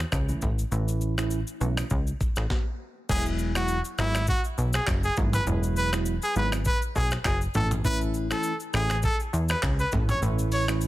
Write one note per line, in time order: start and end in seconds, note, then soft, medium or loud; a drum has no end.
0.00 finger snap medium
0.12 0.34 C#2 loud
0.12 finger snap medium
0.12 kick medium
0.12 cross-stick loud
0.12 shaker medium
0.28 0.49 E3 medium
0.28 0.49 A3 medium
0.28 0.50 C#4 medium
0.28 0.50 E4 medium
0.28 shaker medium
0.42 0.64 A1 medium
0.42 kick loud
0.42 shaker medium
0.59 shaker medium
0.72 1.44 A1 loud
0.72 1.14 E3 medium
0.72 1.14 A3 medium
0.72 1.14 C#4 medium
0.72 1.14 E4 loud
0.72 shaker medium
0.88 shaker medium
1.01 shaker medium
1.18 1.38 E3 medium
1.18 1.39 A3 medium
1.18 1.39 C#4 medium
1.18 1.39 E4 medium
1.18 finger snap medium
1.18 cross-stick medium
1.18 shaker medium
1.31 shaker medium
1.47 shaker soft
1.61 1.83 B1 medium
1.61 1.83 E3 medium
1.61 1.83 A3 medium
1.61 1.83 C#4 medium
1.61 1.83 E4 medium
1.61 shaker soft
1.77 finger snap medium
1.77 cross-stick medium
1.77 shaker medium
1.90 2.13 C#2 medium
1.90 kick medium
1.90 shaker medium
2.07 shaker medium
2.21 kick medium
2.21 shaker medium
2.36 2.47 A1 medium
2.36 finger snap medium
2.36 cross-stick medium
2.36 shaker loud
2.50 kick loud
2.50 snare medium
3.09 3.81 E1 loud
3.09 3.52 F#3 loud
3.09 3.52 G#3 medium
3.09 3.52 B3 medium
3.09 3.52 E4 loud
3.09 3.24 G#4 loud
3.09 kick loud
3.09 crash loud
3.09 shaker medium
3.26 shaker medium
3.39 shaker medium
3.55 3.76 F#3 medium
3.55 3.76 G#3 medium
3.55 3.76 B3 medium
3.55 3.76 E4 medium
3.55 3.81 F#4 medium
3.55 finger snap medium
3.55 cross-stick medium
3.55 shaker medium
3.68 shaker medium
3.85 shaker medium
3.98 4.33 G#1 loud
3.98 4.21 F#3 medium
3.98 4.21 G#3 medium
3.98 4.21 B3 medium
3.98 4.21 E4 medium
3.98 4.24 E4 medium
3.98 finger snap medium
3.98 cross-stick medium
3.98 shaker medium
4.15 finger snap medium
4.15 cross-stick medium
4.15 shaker medium
4.27 4.43 F#4 medium
4.27 kick loud
4.27 shaker medium
4.44 shaker medium
4.58 4.80 B1 medium
4.58 shaker medium
4.73 4.86 G#4 medium
4.73 finger snap medium
4.73 cross-stick loud
4.73 shaker loud
4.87 5.09 F#1 loud
4.87 finger snap medium
4.87 kick medium
4.87 cross-stick loud
4.87 clap loud
4.87 shaker medium
5.04 5.16 G#4 medium
5.04 shaker medium
5.17 5.39 G#1 medium
5.17 5.40 F#3 medium
5.17 5.40 G#3 medium
5.17 5.40 B3 medium
5.17 5.40 E4 medium
5.17 kick loud
5.17 mid tom medium
5.17 shaker medium
5.33 5.46 B4 medium
5.33 mid tom medium
5.33 shaker medium
5.47 6.19 E1 loud
5.47 5.89 F#3 loud
5.47 5.89 G#3 medium
5.47 5.89 B3 medium
5.47 5.89 E4 loud
5.47 shaker medium
5.63 shaker medium
5.76 5.91 B4 medium
5.76 shaker medium
5.93 6.14 F#3 medium
5.93 6.14 G#3 medium
5.93 6.14 B3 medium
5.93 6.14 E4 medium
5.93 finger snap medium
5.93 cross-stick medium
5.93 shaker medium
6.06 shaker medium
6.22 6.35 G#4 medium
6.22 shaker medium
6.36 6.70 G#1 medium
6.36 6.58 F#3 medium
6.36 6.58 G#3 medium
6.36 6.59 B3 medium
6.36 6.59 E4 medium
6.36 6.51 B4 medium
6.36 shaker soft
6.52 finger snap medium
6.52 cross-stick loud
6.52 shaker loud
6.65 6.80 B4 medium
6.65 kick loud
6.65 shaker medium
6.82 shaker medium
6.96 7.17 B1 medium
6.96 7.10 G#4 medium
6.96 kick loud
6.96 shaker medium
7.11 finger snap medium
7.11 cross-stick medium
7.11 shaker loud
7.25 7.47 F#1 loud
7.25 7.40 G#4 medium
7.25 finger snap medium
7.25 kick loud
7.25 cross-stick loud
7.25 clap loud
7.25 shaker medium
7.41 shaker medium
7.54 8.33 A1 loud
7.54 7.77 E3 medium
7.54 7.77 A3 medium
7.54 7.77 C#4 medium
7.54 7.78 E4 medium
7.54 7.69 A4 medium
7.54 mid tom medium
7.54 shaker medium
7.71 mid tom medium
7.71 shaker medium
7.84 8.27 E3 loud
7.84 8.27 A3 medium
7.84 8.27 C#4 medium
7.84 8.27 E4 loud
7.84 7.99 B4 loud
7.84 kick loud
7.84 shaker medium
8.01 shaker medium
8.14 shaker medium
8.30 8.51 E3 medium
8.30 8.51 A3 medium
8.30 8.51 C#4 medium
8.30 8.52 E4 medium
8.30 8.57 A4 medium
8.30 finger snap medium
8.30 cross-stick medium
8.30 shaker medium
8.43 shaker medium
8.60 shaker medium
8.73 9.08 A1 loud
8.73 8.96 E3 medium
8.73 8.96 A3 medium
8.73 8.96 C#4 medium
8.73 8.96 E4 medium
8.73 9.00 G#4 medium
8.73 finger snap medium
8.73 cross-stick medium
8.73 shaker medium
8.90 finger snap medium
8.90 cross-stick medium
8.90 shaker medium
9.03 9.18 A4 medium
9.03 kick loud
9.03 shaker medium
9.20 shaker medium
9.33 9.55 E2 medium
9.33 shaker medium
9.49 9.61 B4 medium
9.49 finger snap medium
9.49 cross-stick medium
9.49 shaker loud
9.63 9.85 C#2 loud
9.63 finger snap medium
9.63 kick loud
9.63 cross-stick loud
9.63 clap loud
9.63 shaker medium
9.79 9.91 B4 medium
9.79 shaker medium
9.92 10.15 A1 medium
9.92 10.15 E3 medium
9.92 10.15 A3 medium
9.92 10.15 C#4 medium
9.92 10.15 E4 medium
9.92 kick loud
9.92 mid tom medium
9.92 shaker medium
10.09 10.21 C#5 medium
10.09 mid tom medium
10.09 shaker medium
10.22 10.87 A1 loud
10.22 10.64 E3 loud
10.22 10.64 A3 medium
10.22 10.64 C#4 medium
10.22 10.65 E4 loud
10.22 shaker medium
10.39 shaker medium
10.52 10.66 C#5 medium
10.52 open hi-hat medium
10.52 shaker medium
10.68 10.87 E3 medium
10.68 10.87 A3 medium
10.68 10.87 C#4 medium
10.68 10.87 E4 medium
10.68 finger snap medium
10.68 cross-stick medium
10.68 shaker medium
10.81 shaker medium